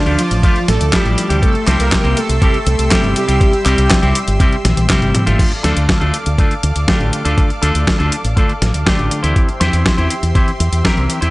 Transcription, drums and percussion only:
0.06 closed hi-hat
0.19 closed hi-hat
0.31 closed hi-hat
0.43 kick, closed hi-hat
0.56 closed hi-hat
0.68 snare, closed hi-hat
0.81 closed hi-hat
0.93 kick, snare, clap, closed hi-hat
1.06 closed hi-hat
1.18 closed hi-hat
1.30 closed hi-hat
1.43 kick, closed hi-hat
1.55 closed hi-hat
1.67 snare, clap, closed hi-hat
1.80 closed hi-hat
1.92 kick, snare, clap, closed hi-hat
2.05 closed hi-hat
2.17 closed hi-hat
2.29 closed hi-hat
2.42 kick, closed hi-hat
2.54 closed hi-hat
2.67 closed hi-hat
2.79 closed hi-hat
2.91 kick, snare, clap, closed hi-hat
3.04 closed hi-hat
3.16 closed hi-hat
3.29 closed hi-hat
3.41 kick, closed hi-hat
3.53 closed hi-hat
3.66 clap, closed hi-hat
3.78 closed hi-hat
3.90 kick, snare, clap, closed hi-hat
4.03 closed hi-hat
4.15 closed hi-hat
4.28 closed hi-hat
4.40 kick, closed hi-hat
4.53 closed hi-hat
4.65 snare, closed hi-hat, high tom
4.77 closed hi-hat, high tom
4.90 kick, snare, clap, closed hi-hat, mid tom
5.02 closed hi-hat, mid tom
5.15 closed hi-hat, mid tom
5.27 closed hi-hat, mid tom
5.39 kick, closed hi-hat, crash
5.52 closed hi-hat
5.64 snare, closed hi-hat
5.77 closed hi-hat
5.89 kick, snare, closed hi-hat
6.01 closed hi-hat
6.14 closed hi-hat
6.26 closed hi-hat
6.38 kick, closed hi-hat
6.51 closed hi-hat
6.63 closed hi-hat
6.76 closed hi-hat
6.88 kick, snare, closed hi-hat
7.01 closed hi-hat
7.13 closed hi-hat
7.25 closed hi-hat
7.38 kick, closed hi-hat
7.50 closed hi-hat
7.63 closed hi-hat
7.75 closed hi-hat
7.87 kick, snare, closed hi-hat
8.00 closed hi-hat
8.12 closed hi-hat
8.25 closed hi-hat
8.37 kick, closed hi-hat
8.49 closed hi-hat
8.62 snare, closed hi-hat
8.74 closed hi-hat
8.86 kick, snare, closed hi-hat
8.99 closed hi-hat
9.11 closed hi-hat
9.24 closed hi-hat
9.36 kick, closed hi-hat
9.49 closed hi-hat
9.61 snare, closed hi-hat
9.73 closed hi-hat
9.86 kick, snare, closed hi-hat
9.98 closed hi-hat
10.10 closed hi-hat
10.23 closed hi-hat
10.35 kick, closed hi-hat
10.48 closed hi-hat
10.60 closed hi-hat
10.73 closed hi-hat
10.85 kick, snare, closed hi-hat
10.97 closed hi-hat
11.10 closed hi-hat
11.22 closed hi-hat

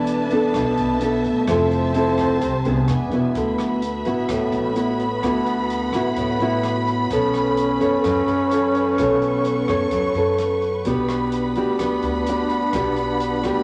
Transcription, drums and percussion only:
0.07 closed hi-hat
0.30 closed hi-hat
0.54 kick, cross-stick, closed hi-hat
0.77 closed hi-hat
1.01 closed hi-hat
1.24 closed hi-hat
1.47 kick, cross-stick, closed hi-hat
1.71 closed hi-hat
1.94 closed hi-hat
2.18 kick, cross-stick, closed hi-hat
2.41 kick, closed hi-hat
2.65 closed hi-hat
2.88 cross-stick, closed hi-hat
3.12 closed hi-hat
3.35 kick, closed hi-hat
3.59 cross-stick, closed hi-hat
3.82 closed hi-hat
4.05 closed hi-hat
4.29 kick, cross-stick, closed hi-hat
4.52 closed hi-hat
4.76 closed hi-hat
5.00 closed hi-hat
5.23 kick, cross-stick, closed hi-hat
5.46 closed hi-hat
5.70 closed hi-hat
5.93 cross-stick, closed hi-hat
6.16 kick, closed hi-hat
6.40 closed hi-hat
6.63 cross-stick, closed hi-hat
6.87 closed hi-hat
7.10 kick, closed hi-hat
7.34 cross-stick, closed hi-hat
7.57 closed hi-hat
7.81 closed hi-hat
8.04 kick, cross-stick, closed hi-hat
8.28 closed hi-hat
8.51 closed hi-hat
8.75 closed hi-hat
8.98 kick, cross-stick, closed hi-hat
9.22 closed hi-hat
9.45 closed hi-hat
9.68 kick, cross-stick, closed hi-hat
9.91 kick, closed hi-hat
10.15 closed hi-hat
10.38 cross-stick, closed hi-hat
10.62 closed hi-hat
10.85 kick, closed hi-hat
11.09 cross-stick, closed hi-hat
11.32 closed hi-hat
11.56 closed hi-hat
11.79 kick, cross-stick, closed hi-hat
12.03 closed hi-hat
12.26 closed hi-hat
12.50 closed hi-hat
12.73 kick, cross-stick, closed hi-hat
12.96 closed hi-hat
13.20 closed hi-hat
13.44 cross-stick, closed hi-hat

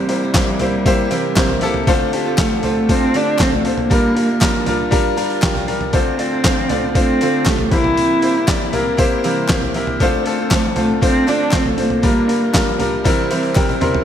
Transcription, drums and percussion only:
0.09 open hi-hat
0.34 kick, snare, clap, open hi-hat
0.59 floor tom, open hi-hat
0.86 kick, open hi-hat
1.11 open hi-hat
1.36 kick, snare, clap, open hi-hat
1.38 clap
1.49 floor tom
1.61 snare, open hi-hat
1.74 floor tom
1.87 kick, open hi-hat
2.13 open hi-hat
2.38 kick, snare, clap, open hi-hat
2.63 floor tom, open hi-hat
2.89 kick, open hi-hat
3.14 open hi-hat
3.38 kick, snare, clap, open hi-hat
3.41 clap
3.52 floor tom
3.65 snare, open hi-hat
3.78 floor tom
3.91 kick, open hi-hat
4.17 open hi-hat
4.41 kick, snare, clap, open hi-hat
4.66 floor tom, open hi-hat
4.92 kick, open hi-hat
5.18 open hi-hat
5.30 open hi-hat
5.42 kick, snare, clap, open hi-hat
5.44 clap
5.55 floor tom, open hi-hat
5.68 snare, open hi-hat
5.81 floor tom
5.93 kick, open hi-hat
6.19 open hi-hat
6.44 kick, snare, clap, open hi-hat
6.69 floor tom, open hi-hat
6.95 kick, open hi-hat
7.21 open hi-hat
7.45 kick, snare, clap, open hi-hat
7.47 clap
7.59 floor tom
7.71 kick, snare, open hi-hat
7.84 floor tom
7.97 open hi-hat
8.22 open hi-hat
8.48 kick, snare, clap, open hi-hat
8.73 floor tom, open hi-hat
8.98 kick, open hi-hat
9.24 open hi-hat
9.48 kick, snare, clap, open hi-hat
9.50 clap
9.62 floor tom
9.74 snare, open hi-hat
9.87 floor tom
10.00 kick, open hi-hat
10.26 open hi-hat
10.51 kick, snare, clap, open hi-hat
10.76 floor tom, open hi-hat
11.02 kick, open hi-hat
11.28 open hi-hat
11.51 kick, snare, clap, open hi-hat
11.54 clap
11.66 floor tom
11.78 snare, open hi-hat
11.90 floor tom
12.03 kick, open hi-hat
12.29 open hi-hat
12.54 kick, snare, clap, open hi-hat
12.80 floor tom, open hi-hat
13.05 kick, open hi-hat
13.31 open hi-hat
13.43 open hi-hat
13.55 kick, snare, clap, open hi-hat
13.69 open hi-hat, high tom
13.81 mid tom, open hi-hat
13.95 floor tom

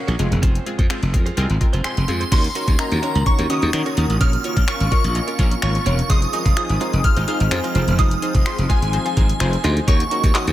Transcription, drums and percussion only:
0.08 closed hi-hat
0.19 closed hi-hat
0.32 closed hi-hat
0.43 kick, closed hi-hat
0.55 closed hi-hat
0.66 closed hi-hat
0.79 kick, closed hi-hat
0.90 finger snap, closed hi-hat
1.03 closed hi-hat
1.14 kick, closed hi-hat
1.26 closed hi-hat
1.37 closed hi-hat
1.50 closed hi-hat
1.61 kick, closed hi-hat
1.73 closed hi-hat
1.84 finger snap, closed hi-hat
1.97 closed hi-hat
2.08 closed hi-hat
2.21 closed hi-hat
2.32 kick, closed hi-hat, crash
2.44 closed hi-hat
2.55 closed hi-hat
2.68 kick, closed hi-hat
2.79 finger snap, closed hi-hat
2.92 closed hi-hat
3.03 closed hi-hat
3.15 closed hi-hat
3.26 kick, closed hi-hat
3.39 closed hi-hat
3.50 closed hi-hat
3.62 closed hi-hat
3.73 finger snap, closed hi-hat
3.86 closed hi-hat
3.97 closed hi-hat
4.10 closed hi-hat
4.21 kick, closed hi-hat
4.33 closed hi-hat
4.44 closed hi-hat
4.57 kick, closed hi-hat
4.68 finger snap, closed hi-hat
4.80 closed hi-hat
4.92 kick, closed hi-hat
5.04 closed hi-hat
5.15 closed hi-hat
5.28 closed hi-hat
5.39 kick, closed hi-hat
5.51 closed hi-hat
5.62 finger snap, closed hi-hat
5.75 closed hi-hat
5.86 closed hi-hat
5.99 closed hi-hat
6.10 kick, closed hi-hat
6.22 closed hi-hat
6.33 closed hi-hat
6.46 kick, closed hi-hat
6.57 finger snap, closed hi-hat
6.70 closed hi-hat
6.81 closed hi-hat
6.93 closed hi-hat
7.04 kick, closed hi-hat
7.17 closed hi-hat
7.28 closed hi-hat
7.40 closed hi-hat
7.51 finger snap, closed hi-hat
7.64 closed hi-hat
7.75 closed hi-hat
7.88 closed hi-hat
7.99 kick, closed hi-hat
8.11 closed hi-hat
8.22 closed hi-hat
8.35 kick, closed hi-hat
8.46 finger snap, closed hi-hat
8.58 closed hi-hat
8.70 kick, closed hi-hat
8.82 closed hi-hat
8.93 closed hi-hat
9.06 closed hi-hat
9.17 kick, closed hi-hat
9.29 closed hi-hat
9.40 finger snap, closed hi-hat
9.53 closed hi-hat
9.64 closed hi-hat
9.77 closed hi-hat
9.88 kick, closed hi-hat
10.00 closed hi-hat
10.11 closed hi-hat
10.24 kick, closed hi-hat
10.35 snare, clap, closed hi-hat
10.47 closed hi-hat

